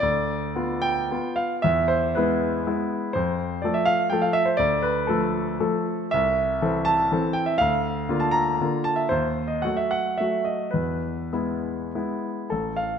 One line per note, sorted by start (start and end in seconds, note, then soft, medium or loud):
0.00 0.55 D2 medium
0.00 0.83 D5 medium
0.56 1.07 B3 soft
0.56 1.07 F4 soft
0.82 1.36 G5 medium
1.11 1.60 B3 soft
1.11 1.60 F4 soft
1.36 1.63 F5 medium
1.62 2.15 E2 soft
1.62 1.89 E5 medium
1.88 2.15 C5 medium
2.15 2.64 G#3 soft
2.15 2.64 B3 soft
2.15 2.64 E4 soft
2.15 3.14 B4 medium
2.67 3.11 G#3 soft
2.67 3.11 B3 soft
2.67 3.11 E4 soft
3.13 3.62 F2 medium
3.13 3.63 C5 medium
3.62 4.08 F3 soft
3.62 4.09 A3 soft
3.62 4.09 A4 soft
3.62 3.75 D5 soft
3.74 3.87 E5 medium
3.86 4.11 F5 medium
4.10 4.55 F3 soft
4.10 4.56 A3 soft
4.10 4.56 A4 soft
4.10 4.23 G5 medium
4.22 4.35 F5 medium
4.33 4.46 E5 medium
4.46 4.58 C5 medium
4.57 5.08 D2 medium
4.57 4.82 D5 medium
4.82 5.09 B4 medium
5.07 5.55 F3 soft
5.07 5.56 A3 soft
5.07 5.59 A4 medium
5.60 6.09 F3 soft
5.60 6.09 A3 soft
5.60 6.09 A4 soft
6.11 6.61 C2 soft
6.11 6.86 E5 medium
6.62 7.08 E3 soft
6.62 7.08 C4 soft
6.62 7.08 A4 soft
6.85 7.35 A5 medium
7.12 7.55 E3 soft
7.12 7.56 C4 soft
7.12 7.56 A4 soft
7.33 7.46 G5 medium
7.46 7.59 E5 medium
7.58 8.07 D2 medium
7.58 8.20 F5 medium
8.09 8.57 D3 soft
8.09 8.57 A#3 soft
8.09 8.57 F4 soft
8.20 8.33 A5 medium
8.31 8.84 A#5 medium
8.61 9.06 D3 soft
8.61 9.07 A#3 soft
8.61 9.07 F4 soft
8.84 8.97 A5 medium
8.96 9.09 E5 medium
9.09 9.62 D#2 soft
9.09 9.48 C5 medium
9.47 9.62 D#5 soft
9.62 10.15 F#3 soft
9.62 10.15 A3 soft
9.62 10.16 F#4 soft
9.62 9.77 F#5 medium
9.77 9.91 E5 medium
9.91 10.18 F#5 medium
10.17 10.70 F#3 soft
10.17 10.70 A3 soft
10.17 10.70 F#4 soft
10.17 10.45 E5 medium
10.44 10.72 D#5 soft
10.71 11.31 E2 soft
10.71 11.93 B4 soft
11.33 11.90 G#3 soft
11.33 11.90 B3 soft
11.33 11.91 E4 soft
11.95 12.48 G#3 soft
11.95 12.49 B3 soft
11.95 12.48 E4 soft
12.50 12.99 A1 soft
12.50 12.77 A4 soft
12.76 12.99 F5 medium